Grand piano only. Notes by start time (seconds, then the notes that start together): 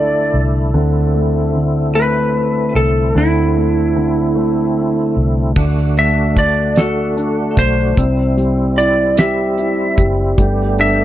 Already playing: D3 A3
0.74 D3
1.14 A3
1.54 D3
1.95 A3
3.15 D3
3.56 A3
3.96 D3
4.35 A3
5.56 D3
5.97 A3
6.37 D4
6.77 F#4
7.17 D4
7.57 A3
7.97 C3
8.37 G3
8.77 E4
9.17 G4
9.58 E4
9.98 G3
10.38 G3
10.79 D4